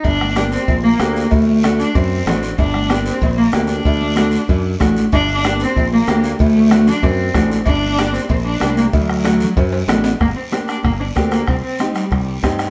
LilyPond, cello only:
\new Staff \with { instrumentName = "Cello" } { \time 4/4 \key g \minor \tempo 4 = 189 d'4 r8 c'4 bes4. | a4. d'8 c'4. r8 | d'4. c'4 bes4 d'8~ | d'2~ d'8 r4. |
d'4 r8 c'4 bes4. | a4. d'8 c'4. r8 | d'4. c'8 c'8 d'4 bes8 | fis2. r4 |
bes8 c'8 c'8 d'8 bes8 d'8 c'8 bes8 | c'8 c'4 g2 r8 | }